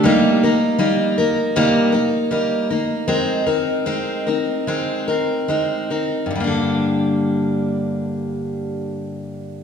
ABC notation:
X:1
M:4/4
L:1/8
Q:1/4=75
K:Gm
V:1 name="Steel-string acoustic guitar"
[C,G,B,EB] [B,EB] [G,B,EB] [B,EB] [C,G,B,EB] [B,EB] [G,B,EB] [B,EB] | [_A,CEB] [CEB] [A,CEB] [CEB] [A,CEB] [CEB] [A,CEB] [CEB] | [G,,D,G,B,DA]8 |]